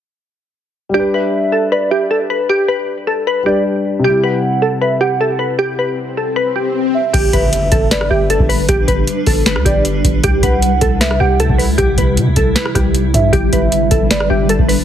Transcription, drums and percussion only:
7.14 kick, closed hi-hat, crash
7.33 kick, closed hi-hat
7.53 closed hi-hat
7.72 kick, closed hi-hat
7.91 snare, closed hi-hat
8.01 cross-stick
8.30 closed hi-hat
8.40 kick
8.50 open hi-hat
8.69 kick, closed hi-hat
8.88 kick, closed hi-hat
9.07 closed hi-hat
9.26 kick, open hi-hat
9.46 snare, closed hi-hat
9.56 cross-stick
9.66 kick, closed hi-hat
9.85 closed hi-hat
10.04 kick, closed hi-hat
10.24 kick, closed hi-hat
10.43 kick, closed hi-hat
10.62 closed hi-hat
10.81 kick, closed hi-hat
11.01 snare, closed hi-hat
11.11 cross-stick
11.40 closed hi-hat
11.49 kick
11.59 open hi-hat
11.78 kick, closed hi-hat
11.98 kick, closed hi-hat
12.17 closed hi-hat
12.36 kick, closed hi-hat
12.56 snare, closed hi-hat
12.65 cross-stick
12.75 kick, cross-stick, closed hi-hat
12.94 closed hi-hat
13.14 kick, closed hi-hat
13.33 kick, closed hi-hat
13.53 kick, closed hi-hat
13.72 closed hi-hat
13.91 kick, closed hi-hat
14.11 snare, closed hi-hat
14.20 cross-stick
14.49 closed hi-hat
14.59 kick
14.69 open hi-hat

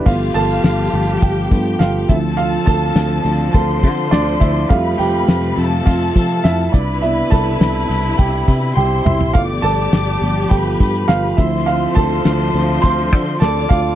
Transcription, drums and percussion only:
0.06 kick, crash
0.35 hi-hat pedal, open hi-hat
0.50 open hi-hat
0.64 snare, hi-hat pedal, open hi-hat
0.79 hi-hat pedal
0.93 hi-hat pedal, open hi-hat
1.22 kick, hi-hat pedal, open hi-hat
1.37 open hi-hat
1.51 kick, hi-hat pedal, open hi-hat
1.66 hi-hat pedal
1.80 snare, hi-hat pedal, open hi-hat
2.09 kick, hi-hat pedal, open hi-hat
2.38 hi-hat pedal, open hi-hat
2.67 kick, hi-hat pedal, open hi-hat
2.82 open hi-hat
2.96 snare, hi-hat pedal, open hi-hat
3.11 hi-hat pedal
3.25 hi-hat pedal, open hi-hat
3.54 kick, hi-hat pedal, open hi-hat
3.69 open hi-hat
3.83 kick, hi-hat pedal, open hi-hat
3.98 hi-hat pedal
4.12 snare, hi-hat pedal, open hi-hat
4.27 snare
4.41 kick, hi-hat pedal, open hi-hat
4.70 kick, hi-hat pedal, open hi-hat
5.00 hi-hat pedal, open hi-hat
5.14 open hi-hat
5.28 snare, hi-hat pedal, open hi-hat
5.43 hi-hat pedal
5.58 hi-hat pedal, open hi-hat
5.87 kick, hi-hat pedal, open hi-hat
6.01 open hi-hat
6.16 kick, hi-hat pedal, open hi-hat
6.31 hi-hat pedal
6.45 snare, hi-hat pedal, open hi-hat
6.59 snare
6.74 kick, hi-hat pedal, open hi-hat
7.03 hi-hat pedal, open hi-hat
7.32 kick, hi-hat pedal, open hi-hat
7.61 snare, hi-hat pedal, open hi-hat
7.90 hi-hat pedal, open hi-hat
8.19 kick, hi-hat pedal, open hi-hat
8.48 kick, hi-hat pedal, open hi-hat
8.77 high tom
9.06 mid tom
9.21 floor tom
9.35 kick, hi-hat pedal, open hi-hat
9.64 hi-hat pedal, open hi-hat
9.93 snare, hi-hat pedal, open hi-hat
10.22 hi-hat pedal, open hi-hat
10.51 kick, hi-hat pedal, open hi-hat
10.66 open hi-hat
10.80 kick, hi-hat pedal, open hi-hat
10.95 hi-hat pedal
11.09 snare, hi-hat pedal, open hi-hat
11.23 snare
11.38 kick, hi-hat pedal, open hi-hat
11.67 hi-hat pedal, open hi-hat
11.96 kick, hi-hat pedal, open hi-hat
12.25 snare, hi-hat pedal, open hi-hat
12.54 hi-hat pedal, open hi-hat
12.84 kick, hi-hat pedal, open hi-hat
12.98 open hi-hat
13.13 kick, hi-hat pedal, open hi-hat
13.27 hi-hat pedal
13.42 snare, hi-hat pedal, open hi-hat
13.56 snare
13.70 kick, hi-hat pedal, open hi-hat

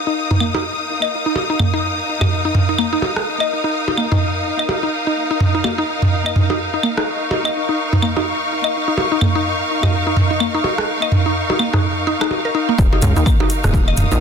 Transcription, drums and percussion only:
0.31 mid tom
0.40 claves
0.55 percussion blips
1.02 claves
1.36 percussion blips
1.59 mid tom, claves
2.21 mid tom, percussion blips, claves
2.55 mid tom
2.78 claves
3.02 percussion blips
3.16 cross-stick
3.40 claves
3.88 percussion blips
3.98 claves
4.12 mid tom
4.59 claves
4.69 percussion blips
5.40 mid tom
5.64 percussion blips, claves
6.02 mid tom
6.26 claves
6.36 mid tom
6.50 percussion blips
6.83 claves
6.98 cross-stick
7.31 percussion blips
7.45 claves
7.93 mid tom
8.02 claves
8.17 percussion blips
8.64 claves
8.98 percussion blips
9.21 mid tom, claves
9.83 mid tom, percussion blips, claves
10.17 mid tom
10.40 claves
10.64 percussion blips
10.78 cross-stick
11.02 claves
11.12 mid tom
11.50 percussion blips
11.59 claves
11.74 cross-stick, mid tom
12.21 cross-stick, claves
12.31 percussion blips
12.78 kick, shaker
12.93 percussion blips
13.02 closed hi-hat, mid tom, shaker
13.16 shaker
13.26 kick, claves, shaker
13.40 percussion blips
13.50 closed hi-hat, shaker
13.64 cross-stick, mid tom, shaker
13.74 kick, percussion blips, shaker
13.88 claves
13.97 closed hi-hat, mid tom, shaker
14.11 shaker

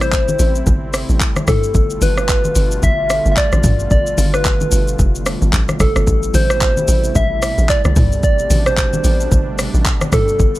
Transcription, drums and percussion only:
0.01 cross-stick, shaker
0.12 kick, clap, shaker
0.28 high conga, shaker
0.39 open hi-hat, shaker
0.55 shaker
0.67 kick, low conga, shaker
0.94 cross-stick, open hi-hat, shaker
1.09 shaker
1.20 kick, clap, shaker
1.36 cross-stick, high conga, shaker
1.47 kick, cross-stick, mid tom, open hi-hat, high conga, low conga, shaker
1.63 shaker
1.75 kick, shaker
1.90 shaker
2.02 open hi-hat, high conga, shaker
2.18 cross-stick, shaker
2.29 kick, clap, shaker
2.45 high conga, shaker
2.55 open hi-hat, shaker
2.71 shaker
2.83 kick, low conga, shaker
3.10 cross-stick, open hi-hat, shaker
3.26 shaker
3.37 kick, clap, shaker
3.52 cross-stick, high conga, shaker
3.64 kick, mid tom, open hi-hat, high conga, low conga, shaker
3.80 shaker
3.91 kick, shaker
4.07 shaker
4.18 open hi-hat, high conga, shaker
4.34 cross-stick, shaker
4.45 kick, clap, shaker
4.61 high conga, shaker
4.72 open hi-hat, shaker
4.88 shaker
4.99 kick, low conga, shaker
5.15 shaker
5.26 cross-stick, open hi-hat, shaker
5.41 high conga, shaker
5.53 kick, clap, shaker
5.69 cross-stick, high conga, shaker
5.80 kick, cross-stick, open hi-hat, high conga, low conga, shaker
5.96 cross-stick, shaker
6.07 kick, shaker
6.23 shaker
6.34 open hi-hat, high conga, shaker
6.50 cross-stick, shaker
6.61 kick, clap, shaker
6.77 high conga, shaker
6.88 open hi-hat, shaker
7.04 shaker
7.15 kick, low conga, shaker
7.42 cross-stick, open hi-hat, shaker
7.58 shaker
7.69 kick, clap, shaker
7.85 cross-stick, high conga, shaker
7.96 kick, mid tom, open hi-hat, high conga, low conga, shaker
8.12 shaker
8.23 kick, shaker
8.39 shaker
8.50 open hi-hat, high conga, shaker
8.66 cross-stick, shaker
8.77 kick, clap, shaker
8.93 high conga, shaker
9.04 open hi-hat, shaker
9.20 shaker
9.32 kick, low conga, shaker
9.59 cross-stick, open hi-hat, shaker
9.74 shaker
9.85 kick, clap, shaker
10.01 cross-stick, high conga, shaker
10.12 kick, cross-stick, mid tom, open hi-hat, high conga, low conga, shaker
10.28 shaker
10.40 kick, shaker
10.55 shaker

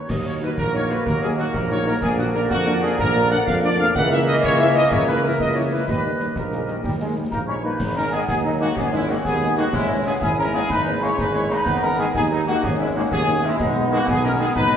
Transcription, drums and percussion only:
0.10 concert bass drum, snare, crash
0.42 snare
0.58 concert bass drum, snare
0.74 snare
0.91 snare
1.07 concert bass drum, snare
1.22 snare
1.38 snare
1.54 concert bass drum, snare
2.02 concert bass drum, snare, crash
2.34 snare
2.50 concert bass drum, snare
2.67 snare
2.83 snare
2.99 concert bass drum, snare
3.15 snare
3.31 snare
3.47 concert bass drum, snare
3.95 concert bass drum, snare, crash
4.27 snare
4.44 concert bass drum, snare
4.60 snare
4.75 snare
4.91 concert bass drum, snare
5.07 snare
5.24 snare
5.40 concert bass drum, snare
5.88 concert bass drum, snare, crash
6.20 snare
6.36 concert bass drum, snare
6.52 snare
6.68 snare
6.84 concert bass drum, snare
7.32 concert bass drum, snare
7.80 concert bass drum, snare, crash
8.12 snare
8.28 concert bass drum, snare
8.61 snare
8.77 concert bass drum, snare
9.25 concert bass drum, snare
9.41 snare
9.57 snare
9.73 concert bass drum, snare, crash
10.06 snare
10.21 concert bass drum, snare
10.54 snare
10.70 concert bass drum, snare
11.18 concert bass drum, snare
11.35 snare
11.50 snare
11.66 concert bass drum, snare, crash
11.98 snare
12.14 concert bass drum, snare
12.47 snare
12.64 concert bass drum, snare
13.12 concert bass drum, snare
13.28 snare
13.44 snare
13.60 concert bass drum, snare, crash
13.92 snare
14.08 concert bass drum, snare
14.40 snare
14.56 concert bass drum, snare

